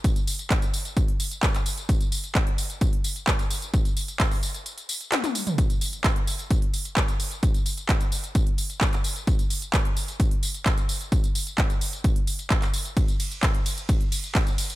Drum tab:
RD |----------------|----------------|----------------|----------------|
HH |xxoxxxoxxxoxxxox|xxoxxxoxxxoxxxox|xxoxxooxxxoxxxox|xxoxxxoxxxoxxxox|
TB |xxxxxxxxx-xxxxxx|xxxxx-xxx-xxxxxx|xxxxxxxxxxxxxxxx|xxxxx-xxx-xxxxxx|
CP |----x-------xx--|----x-------x---|----x-------xx--|----x-------x---|
T1 |----------------|----------------|------------oo--|----------------|
T2 |----------------|----------------|---------------o|----------------|
BD |o---o---o---o---|o---o---o---o---|o---o-----------|o---o---o---o---|

RD |----------------|----------------|----------------|x-x-x-x-x-x-x-x-|
HH |xxoxxxoxxxoxxxox|xxoxxxoxxxoxxxox|xxoxxxoxxxoxxxox|xxoxxxoxxxoxxxox|
TB |xxxxxxxxx-xxxxxx|xxxxx-xxx-xxxxxx|xxxxxxxxx-xxxxxx|xxxxx-xxx-xxxxxx|
CP |----x-------xx--|----x-------x---|----x-------xx--|----x-------x---|
T1 |----------------|----------------|----------------|----------------|
T2 |----------------|----------------|----------------|----------------|
BD |o---o---o---o---|o---o---o---o---|o---o---o---o---|o---o---o---o---|